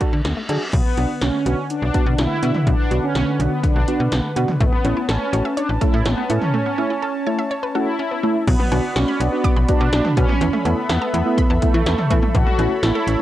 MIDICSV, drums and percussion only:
0, 0, Header, 1, 2, 480
1, 0, Start_track
1, 0, Tempo, 483871
1, 727, Time_signature, 4, 2, 24, 8
1, 13113, End_track
2, 0, Start_track
2, 0, Title_t, "Drums"
2, 7, Note_on_c, 9, 42, 71
2, 9, Note_on_c, 9, 36, 87
2, 106, Note_off_c, 9, 42, 0
2, 108, Note_off_c, 9, 36, 0
2, 247, Note_on_c, 9, 42, 70
2, 248, Note_on_c, 9, 38, 110
2, 346, Note_off_c, 9, 42, 0
2, 348, Note_off_c, 9, 38, 0
2, 487, Note_on_c, 9, 42, 78
2, 586, Note_off_c, 9, 42, 0
2, 727, Note_on_c, 9, 36, 115
2, 727, Note_on_c, 9, 42, 69
2, 727, Note_on_c, 9, 49, 93
2, 826, Note_off_c, 9, 36, 0
2, 826, Note_off_c, 9, 42, 0
2, 826, Note_off_c, 9, 49, 0
2, 966, Note_on_c, 9, 42, 68
2, 1065, Note_off_c, 9, 42, 0
2, 1206, Note_on_c, 9, 38, 113
2, 1208, Note_on_c, 9, 42, 72
2, 1305, Note_off_c, 9, 38, 0
2, 1307, Note_off_c, 9, 42, 0
2, 1450, Note_on_c, 9, 42, 76
2, 1549, Note_off_c, 9, 42, 0
2, 1687, Note_on_c, 9, 42, 72
2, 1786, Note_off_c, 9, 42, 0
2, 1927, Note_on_c, 9, 42, 74
2, 1928, Note_on_c, 9, 36, 91
2, 2026, Note_off_c, 9, 42, 0
2, 2028, Note_off_c, 9, 36, 0
2, 2166, Note_on_c, 9, 42, 77
2, 2168, Note_on_c, 9, 38, 113
2, 2265, Note_off_c, 9, 42, 0
2, 2267, Note_off_c, 9, 38, 0
2, 2408, Note_on_c, 9, 42, 85
2, 2507, Note_off_c, 9, 42, 0
2, 2525, Note_on_c, 9, 45, 98
2, 2624, Note_off_c, 9, 45, 0
2, 2647, Note_on_c, 9, 36, 117
2, 2647, Note_on_c, 9, 42, 67
2, 2746, Note_off_c, 9, 36, 0
2, 2746, Note_off_c, 9, 42, 0
2, 2888, Note_on_c, 9, 42, 69
2, 2987, Note_off_c, 9, 42, 0
2, 3127, Note_on_c, 9, 38, 114
2, 3129, Note_on_c, 9, 42, 74
2, 3226, Note_off_c, 9, 38, 0
2, 3228, Note_off_c, 9, 42, 0
2, 3371, Note_on_c, 9, 42, 79
2, 3470, Note_off_c, 9, 42, 0
2, 3605, Note_on_c, 9, 36, 94
2, 3607, Note_on_c, 9, 42, 74
2, 3704, Note_off_c, 9, 36, 0
2, 3706, Note_off_c, 9, 42, 0
2, 3847, Note_on_c, 9, 42, 73
2, 3946, Note_off_c, 9, 42, 0
2, 4086, Note_on_c, 9, 42, 77
2, 4088, Note_on_c, 9, 38, 119
2, 4185, Note_off_c, 9, 42, 0
2, 4187, Note_off_c, 9, 38, 0
2, 4327, Note_on_c, 9, 42, 86
2, 4427, Note_off_c, 9, 42, 0
2, 4445, Note_on_c, 9, 45, 93
2, 4544, Note_off_c, 9, 45, 0
2, 4567, Note_on_c, 9, 36, 119
2, 4567, Note_on_c, 9, 42, 70
2, 4666, Note_off_c, 9, 36, 0
2, 4666, Note_off_c, 9, 42, 0
2, 4807, Note_on_c, 9, 42, 68
2, 4906, Note_off_c, 9, 42, 0
2, 5046, Note_on_c, 9, 38, 117
2, 5048, Note_on_c, 9, 42, 75
2, 5146, Note_off_c, 9, 38, 0
2, 5148, Note_off_c, 9, 42, 0
2, 5290, Note_on_c, 9, 42, 79
2, 5390, Note_off_c, 9, 42, 0
2, 5528, Note_on_c, 9, 42, 74
2, 5627, Note_off_c, 9, 42, 0
2, 5768, Note_on_c, 9, 42, 78
2, 5769, Note_on_c, 9, 36, 93
2, 5867, Note_off_c, 9, 42, 0
2, 5868, Note_off_c, 9, 36, 0
2, 6006, Note_on_c, 9, 42, 75
2, 6008, Note_on_c, 9, 38, 115
2, 6105, Note_off_c, 9, 42, 0
2, 6107, Note_off_c, 9, 38, 0
2, 6247, Note_on_c, 9, 42, 86
2, 6346, Note_off_c, 9, 42, 0
2, 6365, Note_on_c, 9, 45, 99
2, 6464, Note_off_c, 9, 45, 0
2, 8408, Note_on_c, 9, 36, 119
2, 8408, Note_on_c, 9, 42, 70
2, 8408, Note_on_c, 9, 49, 96
2, 8507, Note_off_c, 9, 36, 0
2, 8507, Note_off_c, 9, 42, 0
2, 8507, Note_off_c, 9, 49, 0
2, 8528, Note_on_c, 9, 47, 70
2, 8627, Note_off_c, 9, 47, 0
2, 8647, Note_on_c, 9, 56, 67
2, 8648, Note_on_c, 9, 42, 69
2, 8746, Note_off_c, 9, 56, 0
2, 8747, Note_off_c, 9, 42, 0
2, 8887, Note_on_c, 9, 38, 114
2, 8889, Note_on_c, 9, 42, 77
2, 8987, Note_off_c, 9, 38, 0
2, 8989, Note_off_c, 9, 42, 0
2, 9131, Note_on_c, 9, 42, 78
2, 9231, Note_off_c, 9, 42, 0
2, 9366, Note_on_c, 9, 36, 99
2, 9368, Note_on_c, 9, 42, 77
2, 9465, Note_off_c, 9, 36, 0
2, 9467, Note_off_c, 9, 42, 0
2, 9608, Note_on_c, 9, 42, 80
2, 9610, Note_on_c, 9, 36, 94
2, 9707, Note_off_c, 9, 42, 0
2, 9709, Note_off_c, 9, 36, 0
2, 9847, Note_on_c, 9, 42, 78
2, 9849, Note_on_c, 9, 38, 118
2, 9946, Note_off_c, 9, 42, 0
2, 9948, Note_off_c, 9, 38, 0
2, 9966, Note_on_c, 9, 45, 100
2, 10065, Note_off_c, 9, 45, 0
2, 10088, Note_on_c, 9, 42, 87
2, 10089, Note_on_c, 9, 56, 71
2, 10091, Note_on_c, 9, 36, 113
2, 10188, Note_off_c, 9, 42, 0
2, 10188, Note_off_c, 9, 56, 0
2, 10190, Note_off_c, 9, 36, 0
2, 10206, Note_on_c, 9, 47, 99
2, 10305, Note_off_c, 9, 47, 0
2, 10328, Note_on_c, 9, 42, 71
2, 10427, Note_off_c, 9, 42, 0
2, 10448, Note_on_c, 9, 47, 72
2, 10547, Note_off_c, 9, 47, 0
2, 10567, Note_on_c, 9, 56, 65
2, 10568, Note_on_c, 9, 42, 69
2, 10666, Note_off_c, 9, 56, 0
2, 10667, Note_off_c, 9, 42, 0
2, 10807, Note_on_c, 9, 38, 119
2, 10809, Note_on_c, 9, 42, 74
2, 10906, Note_off_c, 9, 38, 0
2, 10908, Note_off_c, 9, 42, 0
2, 11051, Note_on_c, 9, 42, 81
2, 11150, Note_off_c, 9, 42, 0
2, 11286, Note_on_c, 9, 36, 97
2, 11289, Note_on_c, 9, 42, 75
2, 11385, Note_off_c, 9, 36, 0
2, 11388, Note_off_c, 9, 42, 0
2, 11528, Note_on_c, 9, 42, 79
2, 11529, Note_on_c, 9, 36, 92
2, 11627, Note_off_c, 9, 42, 0
2, 11628, Note_off_c, 9, 36, 0
2, 11768, Note_on_c, 9, 42, 79
2, 11769, Note_on_c, 9, 38, 122
2, 11867, Note_off_c, 9, 42, 0
2, 11869, Note_off_c, 9, 38, 0
2, 11887, Note_on_c, 9, 45, 101
2, 11986, Note_off_c, 9, 45, 0
2, 12008, Note_on_c, 9, 42, 86
2, 12009, Note_on_c, 9, 56, 66
2, 12010, Note_on_c, 9, 36, 113
2, 12107, Note_off_c, 9, 42, 0
2, 12108, Note_off_c, 9, 56, 0
2, 12110, Note_off_c, 9, 36, 0
2, 12126, Note_on_c, 9, 47, 101
2, 12225, Note_off_c, 9, 47, 0
2, 12248, Note_on_c, 9, 36, 118
2, 12248, Note_on_c, 9, 42, 70
2, 12347, Note_off_c, 9, 36, 0
2, 12347, Note_off_c, 9, 42, 0
2, 12369, Note_on_c, 9, 47, 69
2, 12468, Note_off_c, 9, 47, 0
2, 12487, Note_on_c, 9, 56, 65
2, 12488, Note_on_c, 9, 42, 70
2, 12586, Note_off_c, 9, 56, 0
2, 12587, Note_off_c, 9, 42, 0
2, 12727, Note_on_c, 9, 38, 118
2, 12729, Note_on_c, 9, 42, 77
2, 12826, Note_off_c, 9, 38, 0
2, 12828, Note_off_c, 9, 42, 0
2, 12971, Note_on_c, 9, 42, 78
2, 13071, Note_off_c, 9, 42, 0
2, 13113, End_track
0, 0, End_of_file